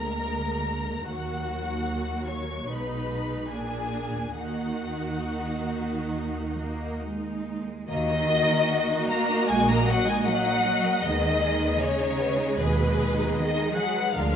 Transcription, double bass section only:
0, 0, Header, 1, 2, 480
1, 0, Start_track
1, 0, Key_signature, -6, "minor"
1, 0, Tempo, 802139
1, 656, Time_signature, 4, 2, 24, 8
1, 2105, Tempo, 874636
1, 4505, Tempo, 791557
1, 5945, Tempo, 774194
1, 8483, End_track
2, 0, Start_track
2, 0, Title_t, "Double bass section"
2, 0, Program_c, 0, 48
2, 0, Note_on_c, 0, 38, 54
2, 632, Note_off_c, 0, 38, 0
2, 654, Note_on_c, 0, 39, 53
2, 1591, Note_off_c, 0, 39, 0
2, 1610, Note_on_c, 0, 35, 52
2, 2096, Note_off_c, 0, 35, 0
2, 2103, Note_on_c, 0, 34, 49
2, 2583, Note_on_c, 0, 39, 46
2, 2584, Note_off_c, 0, 34, 0
2, 4368, Note_off_c, 0, 39, 0
2, 4504, Note_on_c, 0, 39, 81
2, 4912, Note_off_c, 0, 39, 0
2, 5470, Note_on_c, 0, 34, 84
2, 5866, Note_off_c, 0, 34, 0
2, 6424, Note_on_c, 0, 39, 81
2, 6820, Note_off_c, 0, 39, 0
2, 7378, Note_on_c, 0, 39, 82
2, 7783, Note_off_c, 0, 39, 0
2, 8352, Note_on_c, 0, 38, 79
2, 8483, Note_off_c, 0, 38, 0
2, 8483, End_track
0, 0, End_of_file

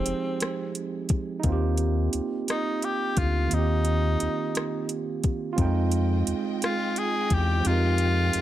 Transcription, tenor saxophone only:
0, 0, Header, 1, 2, 480
1, 0, Start_track
1, 0, Key_signature, -3, "major"
1, 0, Tempo, 689655
1, 1006, Time_signature, 6, 3, 24, 8
1, 5856, End_track
2, 0, Start_track
2, 0, Title_t, "Tenor saxophone"
2, 0, Program_c, 0, 66
2, 0, Note_on_c, 0, 60, 76
2, 533, Note_off_c, 0, 60, 0
2, 1741, Note_on_c, 0, 63, 88
2, 1983, Note_on_c, 0, 67, 91
2, 1993, Note_off_c, 0, 63, 0
2, 2215, Note_on_c, 0, 65, 83
2, 2226, Note_off_c, 0, 67, 0
2, 2463, Note_on_c, 0, 63, 87
2, 2474, Note_off_c, 0, 65, 0
2, 3415, Note_off_c, 0, 63, 0
2, 4627, Note_on_c, 0, 65, 91
2, 4862, Note_on_c, 0, 68, 92
2, 4872, Note_off_c, 0, 65, 0
2, 5103, Note_on_c, 0, 67, 93
2, 5114, Note_off_c, 0, 68, 0
2, 5341, Note_on_c, 0, 65, 93
2, 5351, Note_off_c, 0, 67, 0
2, 5856, Note_off_c, 0, 65, 0
2, 5856, End_track
0, 0, End_of_file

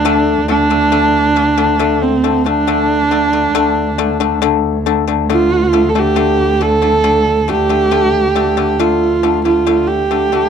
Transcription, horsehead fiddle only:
0, 0, Header, 1, 2, 480
1, 0, Start_track
1, 0, Tempo, 875912
1, 25, Time_signature, 4, 2, 24, 8
1, 5749, End_track
2, 0, Start_track
2, 0, Title_t, "Horsehead fiddle"
2, 0, Program_c, 0, 110
2, 0, Note_on_c, 0, 62, 95
2, 266, Note_off_c, 0, 62, 0
2, 272, Note_on_c, 0, 62, 95
2, 1107, Note_on_c, 0, 60, 76
2, 1115, Note_off_c, 0, 62, 0
2, 1344, Note_on_c, 0, 62, 88
2, 1352, Note_off_c, 0, 60, 0
2, 2416, Note_off_c, 0, 62, 0
2, 2919, Note_on_c, 0, 65, 88
2, 3231, Note_on_c, 0, 69, 69
2, 3239, Note_off_c, 0, 65, 0
2, 3280, Note_on_c, 0, 67, 85
2, 3288, Note_off_c, 0, 69, 0
2, 3633, Note_on_c, 0, 69, 97
2, 3641, Note_off_c, 0, 67, 0
2, 4107, Note_on_c, 0, 67, 88
2, 4115, Note_off_c, 0, 69, 0
2, 4820, Note_on_c, 0, 65, 75
2, 4829, Note_off_c, 0, 67, 0
2, 5173, Note_off_c, 0, 65, 0
2, 5177, Note_on_c, 0, 65, 68
2, 5415, Note_on_c, 0, 67, 83
2, 5423, Note_off_c, 0, 65, 0
2, 5749, Note_off_c, 0, 67, 0
2, 5749, End_track
0, 0, End_of_file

